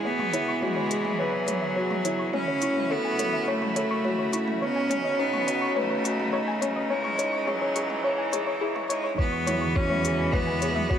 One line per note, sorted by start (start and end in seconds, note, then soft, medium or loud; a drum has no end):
0.00 2.29 G#4 medium
0.05 2.31 E2 medium
0.05 2.32 E3 medium
0.05 0.32 B3 medium
0.05 2.31 B3 medium
0.05 0.64 B3 loud
0.05 6.87 F#4 medium
0.05 0.18 C#5 medium
0.19 0.25 C#6 medium
0.19 mid tom medium
0.33 0.61 E4 medium
0.33 0.47 C#5 loud
0.33 closed hi-hat medium
0.48 0.53 C#6 loud
0.62 1.21 G#3 loud
0.62 0.89 F#4 medium
0.62 0.75 C#5 medium
0.62 mid tom medium
0.76 0.85 C#5 medium
0.91 1.18 G#4 medium
0.91 0.96 C#6 medium
0.91 closed hi-hat medium
1.05 mid tom medium
1.19 2.34 F#3 medium
1.19 1.46 B4 medium
1.19 1.24 C#5 loud
1.34 1.47 G#5 medium
1.48 1.75 G#4 medium
1.48 1.57 C#5 medium
1.48 closed hi-hat medium
1.48 mid tom medium
1.62 1.71 E5 medium
1.76 2.04 F#4 medium
1.76 1.90 C#5 medium
1.90 1.96 C#6 medium
1.90 mid tom medium
2.05 2.32 E4 medium
2.05 2.18 C#5 medium
2.05 closed hi-hat medium
2.19 2.25 C#6 loud
2.33 4.59 F#2 loud
2.33 9.15 C#3 medium
2.33 4.60 A3 medium
2.33 2.60 C#4 medium
2.33 2.93 C#4 loud
2.33 4.60 E4 medium
2.33 2.47 C#5 medium
2.33 mid tom medium
2.48 2.57 C#5 medium
2.62 2.78 E4 medium
2.62 2.68 C#6 medium
2.62 closed hi-hat medium
2.76 mid tom medium
2.90 3.51 B3 loud
2.90 3.17 A4 medium
2.90 2.96 C#5 loud
3.05 3.18 G#5 medium
3.19 3.46 A4 medium
3.19 3.28 C#5 medium
3.19 closed hi-hat medium
3.19 mid tom medium
3.33 3.42 E5 medium
3.47 4.64 A3 loud
3.47 3.64 C#5 medium
3.47 3.61 C#5 medium
3.62 3.67 C#6 medium
3.62 mid tom medium
3.76 4.03 A4 medium
3.76 3.90 C#5 loud
3.76 closed hi-hat medium
3.91 3.96 C#6 loud
4.04 4.32 F#4 medium
4.04 4.18 C#5 medium
4.04 mid tom medium
4.19 4.28 C#5 medium
4.33 4.61 E4 medium
4.33 4.39 C#6 medium
4.33 closed hi-hat medium
4.48 mid tom medium
4.62 6.88 B1 loud
4.62 4.89 B3 medium
4.62 6.88 B3 medium
4.62 5.21 C#4 loud
4.62 9.15 D#4 medium
4.62 4.67 C#5 medium
4.76 4.90 G#5 medium
4.90 5.17 C#4 loud
4.90 4.99 C#5 medium
4.90 closed hi-hat medium
4.90 mid tom medium
5.04 5.14 D#5 medium
5.19 5.77 B3 loud
5.19 5.46 D#4 medium
5.19 5.33 C#5 medium
5.33 5.39 C#6 medium
5.33 mid tom medium
5.47 5.75 F#4 medium
5.47 5.61 C#5 loud
5.47 closed hi-hat medium
5.62 5.67 C#6 loud
5.76 6.93 A3 loud
5.76 6.03 B4 medium
5.76 5.89 C#5 medium
5.76 mid tom medium
5.90 5.99 C#5 medium
6.04 6.32 F#4 medium
6.04 6.10 C#6 medium
6.04 closed hi-hat medium
6.20 mid tom medium
6.33 6.61 D#4 medium
6.33 6.39 C#5 loud
6.48 6.61 G#5 medium
6.61 6.89 C#4 medium
6.61 6.71 C#5 medium
6.61 closed hi-hat medium
6.61 mid tom medium
6.76 6.85 D#5 medium
6.90 9.16 C#2 loud
6.90 9.17 E3 medium
6.90 9.17 G#3 medium
6.90 7.50 G#3 loud
6.90 7.18 C#4 medium
6.90 7.04 C#5 medium
7.04 7.10 C#6 medium
7.04 mid tom medium
7.19 7.35 D#4 medium
7.19 7.32 C#5 loud
7.19 closed hi-hat medium
7.33 7.39 C#6 loud
7.47 8.07 F#3 loud
7.47 7.75 G#4 medium
7.47 7.60 C#5 medium
7.47 mid tom medium
7.62 7.71 C#5 medium
7.75 8.03 G#4 medium
7.75 7.81 C#6 medium
7.75 closed hi-hat medium
7.90 mid tom medium
8.04 8.90 E3 medium
8.04 8.10 C#5 loud
8.04 8.21 C#5 medium
8.18 8.32 G#5 medium
8.32 8.61 G#4 medium
8.32 8.38 C#5 medium
8.32 closed hi-hat medium
8.32 mid tom medium
8.47 8.53 C#5 medium
8.61 8.89 E4 medium
8.61 8.75 G#4 loud
8.75 8.85 C#6 medium
8.75 mid tom medium
8.89 9.17 G#3 medium
8.89 9.18 D#4 medium
8.89 8.99 C#5 loud
8.89 closed hi-hat medium
9.04 9.13 C#5 medium
9.17 10.99 E2 loud
9.17 10.99 E3 medium
9.17 10.99 G#3 medium
9.17 10.99 B3 medium
9.17 9.35 B3 medium
9.17 9.77 B3 medium
9.17 10.99 F#4 medium
9.17 9.32 C#5 medium
9.17 kick loud
9.32 9.38 C#6 medium
9.47 9.64 E4 medium
9.47 9.61 C#5 loud
9.47 closed hi-hat medium
9.47 mid tom medium
9.61 9.67 C#6 loud
9.76 10.34 C#4 loud
9.76 10.04 F#4 medium
9.76 9.89 C#5 medium
9.76 kick loud
9.90 9.99 C#5 medium
9.90 mid tom medium
10.04 10.32 G#4 medium
10.04 10.10 C#6 medium
10.04 closed hi-hat medium
10.32 10.99 B3 loud
10.32 10.61 B4 loud
10.32 10.39 C#5 loud
10.32 kick loud
10.32 mid tom medium
10.47 10.61 G#5 medium
10.61 10.78 G#4 medium
10.61 10.71 C#5 medium
10.61 closed hi-hat medium
10.75 10.85 E5 medium
10.75 mid tom medium
10.90 10.99 F#4 medium
10.90 10.99 C#5 medium
10.90 kick loud